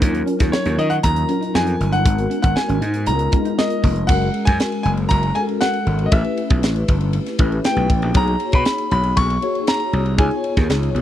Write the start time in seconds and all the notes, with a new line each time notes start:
0.01 D#2 F#3 C#4 D#4 F4 A#4, kick, closed hi-hat
0.13 muted clean electric guitar stroke, closed hi-hat
0.26 C#4, closed hi-hat
0.39 D#2 A#3, kick, snare, closed hi-hat
0.52 C#5, muted clean electric guitar stroke, snare
0.64 D#2 C#4, closed hi-hat
0.77 D#3 D#4 D#5, closed hi-hat
0.90 F#5, closed hi-hat
1.03 D#2 A#5, kick, closed hi-hat
1.16 closed hi-hat
1.29 F#3 C#4 D#4 F4 A#4, closed hi-hat
1.41 D#4, closed hi-hat
1.54 F2 D#4 G#5, snare
1.67 muted clean electric guitar stroke, closed hi-hat
1.80 G1, closed hi-hat
1.91 C#4 F#5, closed hi-hat
2.05 G#1 G#3 B3 D#4 F#4 A#4, kick, closed hi-hat
2.18 muted clean electric guitar stroke, closed hi-hat
2.30 C#4, closed hi-hat
2.42 G#1 B3 F#5, kick, closed hi-hat
2.55 G#5, muted clean electric guitar stroke, snare
2.68 G#1 C#4, closed hi-hat
2.81 G#2 D#4, closed hi-hat
2.94 closed hi-hat
3.06 C#2 G#3 B3 D#4 F4 A#4 A#5, muted clean electric guitar stroke, closed hi-hat
3.19 closed hi-hat
3.32 G#3 B3 C#4 D#4 F4 A#4, kick, closed hi-hat
3.45 D#4, closed hi-hat
3.58 D#5, snare
3.70 closed hi-hat
3.82 F1 A#3, kick, open hi-hat
3.96 closed hi-hat
4.07 F#1 G#3 C#4 F#4 A#4 F#5, kick, crash
4.21 ride
4.34 ride
4.45 F#2 G#5, kick, snare, ride
4.60 snare, ride
4.72 ride
4.83 F#1 G#5, ride
4.97 ride
5.09 F#1 A#5, kick, ride
5.23 ride
5.35 G#3 C#4 F#4 A4 G#5, ride
5.42 A#4
5.49 ride
5.61 F#5, snare, ride
5.74 ride
5.86 G#1, ride
5.99 ride
6.06 D#5
6.11 A1 A3 C#4 E4 G4 B4 E5, kick, ride
6.24 ride
6.37 ride
6.50 B1, kick, ride
6.63 A1, snare, ride
6.76 ride
6.88 G1, kick, ride
7.01 ride
7.13 ride
7.26 snare, ride
7.38 A1 A3 C#4 E4 G4 B4, kick, ride
7.52 ride
7.64 G5, snare, ride
7.76 B1, ride
7.90 A1, kick, ride
8.02 A#1, ride
8.14 B1 A#3 D#4 F#4 G#4 C#5 A#5, kick, ride
8.27 ride
8.40 ride
8.52 B2 B5, kick, ride
8.65 snare, ride
8.78 ride
8.91 B1 B5, ride
9.04 ride
9.17 B1 C#6, kick, ride
9.30 ride
9.42 A#3 D#4 F#4 G#4 C#5, ride
9.55 ride
9.67 A#5, snare, ride
9.80 ride
9.93 C2, ride
10.06 ride
10.18 C#2 B3 D#4 F4 G#4 C#5 G#5, kick, ride
10.31 ride
10.44 ride
10.57 D#2, kick, snare, ride
10.69 C#2, snare, ride
10.83 ride
10.95 B1, ride